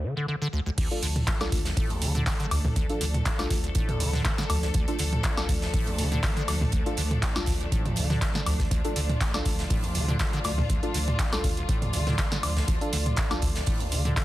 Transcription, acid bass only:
0.03 D3
0.17 D3
0.28 D3
0.42 D3
0.53 D2
0.66 D2
0.78 D2
1.02 D3
1.41 C2
1.52 D2
1.65 D1
1.77 A2
1.90 D2
2.02 D3
2.15 D3
2.40 D3
2.51 D2
2.65 D2
2.76 D2
3.01 D3
3.39 C2
3.51 D2
3.64 D1
3.75 A2
3.89 D2
4.00 D3
4.13 D3
4.25 D3
4.38 D3
4.50 D2
4.63 D2
4.74 D2
4.99 D3
5.37 C2
5.49 D2
5.62 D1
5.74 A2
5.87 D2
5.99 D3
6.12 D3
6.37 D3
6.48 D2
6.61 D2
6.73 D2
6.98 D3
7.36 C2
7.47 D2
7.61 D1
7.72 A2
7.85 D2
7.97 D3
8.10 D3
8.35 D3
8.47 D2
8.60 D2
8.71 D2
8.96 D3
9.34 C2
9.46 D2
9.59 D1
9.71 A2
9.84 D2
9.95 D3
10.09 D3
10.20 D3
10.33 D3
10.45 D2
10.58 D2
10.70 D2
10.95 D3
11.33 C2
11.44 D2
11.58 D1
11.69 A2
11.82 D2
11.94 D3
12.07 D3
12.32 D3
12.43 D2
12.56 D2
12.68 D2
12.93 D3
13.31 C2
13.42 D2
13.56 D1
13.67 A2
13.80 D2
13.92 D3
14.05 D3
14.17 D3

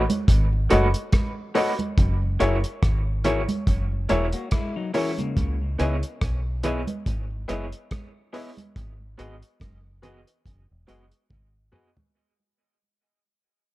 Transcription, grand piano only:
0.10 C#5 D#5
0.70 F#4 A4 C#5 D#5
1.55 F#4 A4 C#5 D#5
2.40 E4 G#4 A#4 C#5
3.25 E4 G#4 A#4 C#5
3.49 A#4 C#5
4.09 E4 G#4 A#4 C#5
4.94 E4 G#4 A#4 C#5
5.79 E4 G#4 B4 D#5
6.63 E4 G#4 B4 D#5
6.88 B4 D#5
7.48 E4 G#4 B4 D#5
8.33 E4 G#4 B4 D#5
9.18 F#4 G#4 B4 D#5
10.02 F#4 G#4 B4 D#5
10.27 B4 D#5
10.88 F#4 G#4 B4 D#5
11.72 F#4 G#4 B4 D#5

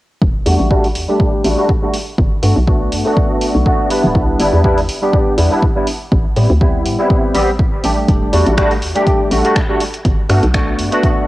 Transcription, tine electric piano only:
0.46 G3 A3 D4 F#4
0.70 G3 A3 D4 F#4
1.08 G3 A3 D4 G4
1.44 G3 A3 D4 F#4
1.57 G3 A3 D4 F#4
1.82 G3 A3 D4 F#4
2.42 A3 B3 D4 F#4
2.67 A3 B3 D4 F#4
3.04 A3 B3 D4 F#4
3.65 A3 B3 D4 F#4
3.90 G3 B3 D4 E4
4.39 G3 B3 D4 E4
4.64 G3 B3 D4 E4
5.02 G3 B3 D4 G4
5.37 G3 B3 D4 E4
5.51 G3 B3 D4 E4
5.75 G3 B3 D4 E4
6.36 G3 B3 C4 E4
6.60 G3 B3 C4 E4
6.98 G3 B3 C4 E4
7.34 G3 B3 C4 G4
7.83 G3 A3 D4 G4
8.32 G3 A3 D4 F#4
8.57 G3 A3 D4 F#4
8.95 G3 A3 D4 G4
9.31 G3 A3 D4 F#4
9.44 G3 A3 D4 F#4
9.69 G3 A3 D4 F#4
10.29 A3 B3 D4 F#4
10.54 A3 B3 D4 F#4
10.91 A3 B3 D4 F#4

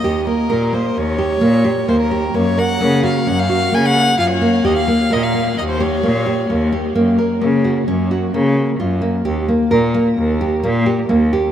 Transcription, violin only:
Already playing: D#5
0.27 A#4
0.74 C5
0.97 C#5
1.89 C5
2.00 A#4
2.35 C#5
2.59 F#5
3.05 F5
3.28 F#5
3.39 F5
3.74 G#5
3.86 F#5
4.19 F5
4.30 C#5
4.65 D#5
4.77 F5
5.12 D#5
5.23 F5
5.58 D#5
5.69 C5
5.81 C#5

